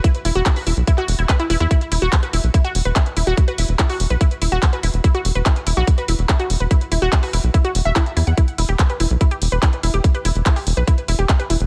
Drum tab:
HH |xxoxxooxxxo-xxox|xxoxxxoxxxoxxxox|xxoxxooxxxoxxxox|xxoxxxoxxxoxxxox|
CP |----x----x--x---|----x-------x---|----x-------x---|----x-------x---|
BD |o---o---o---o---|o---o---o---o---|o---o---o---o---|o---o---o---o---|

HH |xxoxxooxxxoxxxox|xxo-xxoxxxoxxxox|xxoxxoo-xxoxxxox|
CP |----x-------x---|----x-------x---|----x-------x---|
BD |o---o---o---o---|o---o---o---o---|o---o---o---o---|